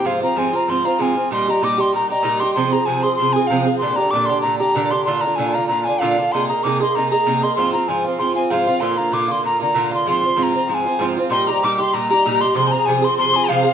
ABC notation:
X:1
M:4/4
L:1/16
Q:"Swing" 1/4=192
K:Fdor
V:1 name="Tin whistle"
z16 | z16 | z16 | z16 |
z16 | z16 | z16 | z16 |
z16 | c'2 b2 d'2 c'2 b2 b4 c'2 | c'2 b2 a2 c'2 c'4 f4 |]
V:2 name="Tin whistle"
f2 b2 a2 b3/2 b/2 c'2 b2 a4 | c'2 b2 d'2 c'2 b2 b4 c'2 | c'2 b2 a2 c'2 c'2 a2 f4 | c'2 b2 d'2 c'2 b2 b4 c'2 |
c'2 b2 a2 b2 b2 a2 f4 | c'2 b2 d'2 c'2 b2 b4 c'2 | c'2 b2 a2 z2 c'2 a2 f4 | c'2 b2 d'2 c'2 b2 b4 c'2 |
c'4 b4 a6 z2 | c'2 b2 d'2 c'2 b2 b4 c'2 | c'3/2 a/2 b2 a2 c'2 c'2 a2 f4 |]
V:3 name="Bouzouki"
[A,,F,CF]2 [F,CF]2 [A,,F,CF]2 [F,CF]2 [A,,F,CF]2 [F,CF]2 [A,,F,CF]2 [F,CF]2 | [B,,G,EG]2 [G,EG]2 [B,,G,EG]2 [G,EG]2 [B,,G,EG]2 [G,EG]2 [B,,G,EG]2 [G,EG]2 | [C,F,CA]2 [F,CA]2 [C,F,CA]2 [F,CA]2 [C,F,CA]2 [F,CA]2 [C,F,CA]2 [F,CA]2 | [B,,D,DG]2 [D,DG]2 [B,,D,DG]2 [D,DG]2 [B,,D,DG]2 [D,DG]2 [B,,D,DG]2 [D,DG]2 |
[B,,D,DF]2 [D,DF]2 [B,,D,DF]2 [D,DF]2 [B,,D,DF]2 [D,DF]2 [B,,D,DF]2 [D,DF]2 | [C,B,EA]2 [B,EA]2 [C,B,EA]2 [B,EA]2 [C,B,EA]2 [B,EA]2 [C,B,EA]2 [B,EA]2 | [A,,F,CF]2 [F,CF]2 [A,,F,CF]2 [F,CF]2 [A,,F,CF]2 [F,CF]2 [A,,F,CF]2 [F,CF]2 | [B,,D,B,F]2 [D,B,F]2 [B,,D,B,F]2 [D,B,F]2 [B,,D,B,F]2 [D,B,F]2 [B,,D,B,F]2 [D,B,F]2 |
[A,,F,CF]2 [F,CF]2 [A,,F,CF]2 [F,CF]2 [A,,F,CF]2 [F,CF]2 [A,,F,CF]2 [F,CF]2 | [B,,G,EG]2 [G,EG]2 [B,,G,EG]2 [G,EG]2 [B,,G,EG]2 [G,EG]2 [B,,G,EG]2 [G,EG]2 | [C,F,CA]2 [F,CA]2 [C,F,CA]2 [F,CA]2 [C,F,CA]2 [F,CA]2 [C,F,CA]2 [F,CA]2 |]